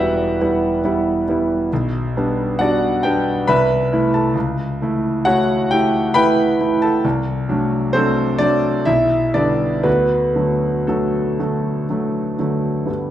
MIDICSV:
0, 0, Header, 1, 2, 480
1, 0, Start_track
1, 0, Tempo, 874636
1, 936, Time_signature, 3, 2, 24, 8
1, 2385, Tempo, 898204
1, 4305, Tempo, 931677
1, 4785, Tempo, 1008403
1, 6225, Tempo, 977199
1, 6820, End_track
2, 0, Start_track
2, 0, Title_t, "Grand piano"
2, 0, Program_c, 0, 0
2, 0, Control_c, 0, 64, 127
2, 0, Note_on_c, 0, 28, 67
2, 0, Note_on_c, 0, 40, 69
2, 0, Note_on_c, 0, 55, 62
2, 0, Note_on_c, 0, 59, 52
2, 0, Note_on_c, 0, 64, 67
2, 0, Note_on_c, 0, 66, 70
2, 0, Note_on_c, 0, 67, 68
2, 0, Note_on_c, 0, 71, 67
2, 0, Note_on_c, 0, 76, 92
2, 0, Note_on_c, 0, 78, 88
2, 0, Note_on_c, 0, 79, 97
2, 200, Note_off_c, 0, 55, 0
2, 200, Note_off_c, 0, 59, 0
2, 219, Note_off_c, 0, 64, 0
2, 226, Note_on_c, 0, 55, 56
2, 227, Note_on_c, 0, 64, 62
2, 228, Note_on_c, 0, 59, 61
2, 437, Note_off_c, 0, 55, 0
2, 438, Note_off_c, 0, 59, 0
2, 438, Note_off_c, 0, 64, 0
2, 465, Note_on_c, 0, 55, 66
2, 465, Note_on_c, 0, 59, 55
2, 466, Note_on_c, 0, 64, 68
2, 677, Note_off_c, 0, 55, 0
2, 677, Note_off_c, 0, 59, 0
2, 677, Note_off_c, 0, 64, 0
2, 705, Note_on_c, 0, 55, 58
2, 710, Note_on_c, 0, 59, 56
2, 717, Note_on_c, 0, 64, 65
2, 915, Note_off_c, 0, 71, 0
2, 919, Note_off_c, 0, 55, 0
2, 922, Note_off_c, 0, 59, 0
2, 925, Note_off_c, 0, 64, 0
2, 935, Note_off_c, 0, 76, 0
2, 946, Control_c, 0, 64, 0
2, 948, Note_off_c, 0, 40, 0
2, 949, Note_off_c, 0, 66, 0
2, 949, Note_on_c, 0, 35, 80
2, 951, Note_off_c, 0, 28, 0
2, 951, Note_off_c, 0, 67, 0
2, 951, Note_off_c, 0, 78, 0
2, 952, Note_off_c, 0, 79, 0
2, 1023, Control_c, 0, 64, 127
2, 1177, Note_off_c, 0, 35, 0
2, 1190, Note_on_c, 0, 62, 60
2, 1192, Note_on_c, 0, 55, 58
2, 1193, Note_on_c, 0, 59, 62
2, 1402, Note_off_c, 0, 62, 0
2, 1403, Note_off_c, 0, 55, 0
2, 1404, Note_off_c, 0, 59, 0
2, 1420, Note_on_c, 0, 78, 94
2, 1427, Note_on_c, 0, 55, 61
2, 1432, Note_on_c, 0, 59, 57
2, 1432, Note_on_c, 0, 74, 78
2, 1433, Note_on_c, 0, 62, 67
2, 1434, Note_on_c, 0, 66, 81
2, 1642, Note_off_c, 0, 55, 0
2, 1645, Note_off_c, 0, 59, 0
2, 1645, Note_off_c, 0, 62, 0
2, 1650, Note_off_c, 0, 74, 0
2, 1651, Note_off_c, 0, 66, 0
2, 1661, Note_off_c, 0, 78, 0
2, 1664, Note_on_c, 0, 79, 92
2, 1670, Note_on_c, 0, 55, 61
2, 1670, Note_on_c, 0, 67, 68
2, 1671, Note_on_c, 0, 62, 71
2, 1672, Note_on_c, 0, 59, 61
2, 1884, Note_off_c, 0, 55, 0
2, 1885, Note_off_c, 0, 59, 0
2, 1885, Note_off_c, 0, 62, 0
2, 1890, Note_off_c, 0, 67, 0
2, 1903, Note_off_c, 0, 79, 0
2, 1907, Note_on_c, 0, 83, 105
2, 1910, Control_c, 0, 64, 0
2, 1912, Note_on_c, 0, 71, 92
2, 1914, Note_on_c, 0, 36, 82
2, 1916, Note_on_c, 0, 76, 87
2, 1998, Control_c, 0, 64, 127
2, 2141, Note_off_c, 0, 36, 0
2, 2154, Note_on_c, 0, 52, 61
2, 2156, Note_on_c, 0, 57, 58
2, 2157, Note_on_c, 0, 64, 71
2, 2246, Note_off_c, 0, 71, 0
2, 2248, Note_off_c, 0, 76, 0
2, 2266, Note_off_c, 0, 83, 0
2, 2272, Note_on_c, 0, 81, 78
2, 2278, Note_on_c, 0, 69, 53
2, 2370, Note_off_c, 0, 52, 0
2, 2371, Note_off_c, 0, 57, 0
2, 2371, Note_off_c, 0, 64, 0
2, 2381, Note_on_c, 0, 37, 72
2, 2385, Note_off_c, 0, 69, 0
2, 2390, Note_off_c, 0, 81, 0
2, 2395, Control_c, 0, 64, 0
2, 2497, Control_c, 0, 64, 127
2, 2618, Note_off_c, 0, 37, 0
2, 2637, Note_on_c, 0, 52, 65
2, 2640, Note_on_c, 0, 57, 61
2, 2644, Note_on_c, 0, 64, 63
2, 2853, Note_off_c, 0, 52, 0
2, 2854, Note_off_c, 0, 57, 0
2, 2856, Note_off_c, 0, 64, 0
2, 2868, Note_on_c, 0, 78, 109
2, 2875, Note_on_c, 0, 52, 63
2, 2875, Note_on_c, 0, 73, 77
2, 2877, Note_on_c, 0, 66, 79
2, 2879, Note_on_c, 0, 57, 65
2, 2879, Note_on_c, 0, 64, 69
2, 3092, Note_off_c, 0, 52, 0
2, 3094, Note_off_c, 0, 57, 0
2, 3094, Note_off_c, 0, 64, 0
2, 3097, Note_off_c, 0, 73, 0
2, 3098, Note_off_c, 0, 66, 0
2, 3110, Note_off_c, 0, 78, 0
2, 3113, Note_on_c, 0, 79, 99
2, 3115, Note_on_c, 0, 67, 75
2, 3118, Note_on_c, 0, 52, 62
2, 3121, Note_on_c, 0, 57, 65
2, 3124, Note_on_c, 0, 64, 61
2, 3334, Note_off_c, 0, 52, 0
2, 3335, Note_off_c, 0, 57, 0
2, 3337, Note_off_c, 0, 64, 0
2, 3337, Note_off_c, 0, 67, 0
2, 3342, Note_off_c, 0, 79, 0
2, 3345, Note_on_c, 0, 83, 127
2, 3350, Note_on_c, 0, 52, 67
2, 3350, Note_on_c, 0, 79, 97
2, 3353, Note_on_c, 0, 71, 91
2, 3354, Note_on_c, 0, 57, 61
2, 3358, Note_on_c, 0, 64, 73
2, 3567, Note_off_c, 0, 52, 0
2, 3570, Note_off_c, 0, 57, 0
2, 3571, Note_off_c, 0, 64, 0
2, 3592, Note_on_c, 0, 52, 57
2, 3594, Note_on_c, 0, 57, 55
2, 3594, Note_on_c, 0, 64, 63
2, 3686, Note_off_c, 0, 79, 0
2, 3688, Note_off_c, 0, 71, 0
2, 3705, Note_off_c, 0, 83, 0
2, 3707, Note_on_c, 0, 81, 87
2, 3716, Note_on_c, 0, 69, 63
2, 3807, Note_off_c, 0, 52, 0
2, 3808, Note_off_c, 0, 57, 0
2, 3808, Note_off_c, 0, 64, 0
2, 3823, Note_off_c, 0, 69, 0
2, 3826, Note_off_c, 0, 81, 0
2, 3827, Note_on_c, 0, 36, 80
2, 3835, Control_c, 0, 64, 0
2, 3913, Control_c, 0, 64, 127
2, 4059, Note_off_c, 0, 36, 0
2, 4065, Note_on_c, 0, 54, 57
2, 4067, Note_on_c, 0, 62, 67
2, 4072, Note_on_c, 0, 57, 57
2, 4284, Note_off_c, 0, 54, 0
2, 4285, Note_off_c, 0, 62, 0
2, 4287, Note_off_c, 0, 57, 0
2, 4300, Note_on_c, 0, 72, 101
2, 4306, Note_on_c, 0, 60, 78
2, 4308, Note_on_c, 0, 54, 60
2, 4308, Note_on_c, 0, 69, 76
2, 4309, Note_on_c, 0, 57, 58
2, 4312, Note_on_c, 0, 62, 64
2, 4522, Note_off_c, 0, 54, 0
2, 4523, Note_off_c, 0, 57, 0
2, 4524, Note_off_c, 0, 62, 0
2, 4526, Note_off_c, 0, 60, 0
2, 4526, Note_off_c, 0, 69, 0
2, 4535, Note_on_c, 0, 74, 112
2, 4539, Note_off_c, 0, 72, 0
2, 4541, Note_on_c, 0, 57, 59
2, 4542, Note_on_c, 0, 62, 71
2, 4544, Note_on_c, 0, 54, 61
2, 4764, Note_off_c, 0, 57, 0
2, 4766, Note_off_c, 0, 54, 0
2, 4768, Note_off_c, 0, 62, 0
2, 4777, Note_on_c, 0, 76, 98
2, 4782, Note_off_c, 0, 74, 0
2, 4782, Note_on_c, 0, 64, 80
2, 4784, Note_on_c, 0, 35, 75
2, 4793, Control_c, 0, 64, 0
2, 4872, Control_c, 0, 64, 127
2, 4999, Note_off_c, 0, 64, 0
2, 5009, Note_off_c, 0, 35, 0
2, 5009, Note_on_c, 0, 74, 92
2, 5010, Note_on_c, 0, 50, 53
2, 5012, Note_off_c, 0, 76, 0
2, 5014, Note_on_c, 0, 55, 52
2, 5014, Note_on_c, 0, 62, 70
2, 5015, Note_on_c, 0, 59, 54
2, 5233, Note_off_c, 0, 50, 0
2, 5236, Note_off_c, 0, 55, 0
2, 5236, Note_off_c, 0, 59, 0
2, 5238, Note_off_c, 0, 62, 0
2, 5244, Note_on_c, 0, 71, 88
2, 5245, Note_on_c, 0, 59, 71
2, 5246, Note_on_c, 0, 38, 63
2, 5246, Note_on_c, 0, 66, 71
2, 5252, Note_off_c, 0, 74, 0
2, 5266, Control_c, 0, 64, 0
2, 5347, Control_c, 0, 64, 127
2, 5489, Note_off_c, 0, 38, 0
2, 5492, Note_on_c, 0, 50, 52
2, 5495, Note_on_c, 0, 57, 49
2, 5496, Note_on_c, 0, 54, 51
2, 5722, Note_off_c, 0, 59, 0
2, 5723, Note_off_c, 0, 50, 0
2, 5723, Note_off_c, 0, 66, 0
2, 5724, Note_off_c, 0, 57, 0
2, 5725, Note_off_c, 0, 54, 0
2, 5737, Note_on_c, 0, 69, 66
2, 5741, Note_off_c, 0, 71, 0
2, 5741, Note_on_c, 0, 50, 50
2, 5741, Note_on_c, 0, 66, 51
2, 5742, Note_on_c, 0, 57, 49
2, 5744, Note_on_c, 0, 54, 53
2, 5966, Note_off_c, 0, 50, 0
2, 5968, Note_off_c, 0, 54, 0
2, 5981, Note_off_c, 0, 57, 0
2, 5986, Note_on_c, 0, 50, 50
2, 5987, Note_on_c, 0, 54, 51
2, 5988, Note_on_c, 0, 57, 55
2, 6205, Note_off_c, 0, 50, 0
2, 6205, Note_off_c, 0, 54, 0
2, 6206, Note_off_c, 0, 57, 0
2, 6225, Note_on_c, 0, 50, 49
2, 6228, Note_on_c, 0, 54, 51
2, 6230, Note_on_c, 0, 57, 54
2, 6446, Note_off_c, 0, 66, 0
2, 6449, Note_off_c, 0, 50, 0
2, 6451, Note_off_c, 0, 54, 0
2, 6452, Note_off_c, 0, 57, 0
2, 6464, Note_off_c, 0, 69, 0
2, 6468, Note_on_c, 0, 50, 49
2, 6470, Note_on_c, 0, 54, 43
2, 6473, Note_on_c, 0, 57, 51
2, 6688, Note_off_c, 0, 50, 0
2, 6689, Note_off_c, 0, 54, 0
2, 6691, Note_off_c, 0, 57, 0
2, 6698, Note_on_c, 0, 50, 42
2, 6701, Note_on_c, 0, 43, 44
2, 6702, Note_on_c, 0, 59, 42
2, 6704, Note_on_c, 0, 55, 46
2, 6717, Control_c, 0, 64, 0
2, 6814, Control_c, 0, 64, 127
2, 6820, Note_off_c, 0, 43, 0
2, 6820, Note_off_c, 0, 50, 0
2, 6820, Note_off_c, 0, 55, 0
2, 6820, Note_off_c, 0, 59, 0
2, 6820, End_track
0, 0, End_of_file